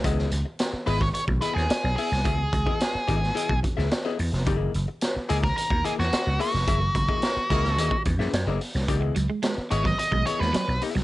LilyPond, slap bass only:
\new Staff \with { instrumentName = "Slap bass" } { \clef bass \time 4/4 \key cis \dorian \tempo 4 = 109 cis,8 cis,16 r8. gis,,8 r16 b,,16 r16 dis,16 r16 b,,16 r16 bis,,16 | cis,8 cis,16 r8. gis,,8 r16 b,,16 r16 cis,16 r8 e,16 eis,,16 | fis,,8 fis,,16 r8. cis,8 r16 dis,16 r16 e,16 r16 cis,16 r16 eis,,16 | fis,,8 fis,,16 r8. cis,8 dis,16 r16 e,16 fis,16 fis,16 fis,,16 r16 bis,,16 |
cis,8 cis,16 r8. gis,,8 r16 b,,16 r16 dis,16 r16 b,,16 r16 bis,,16 | }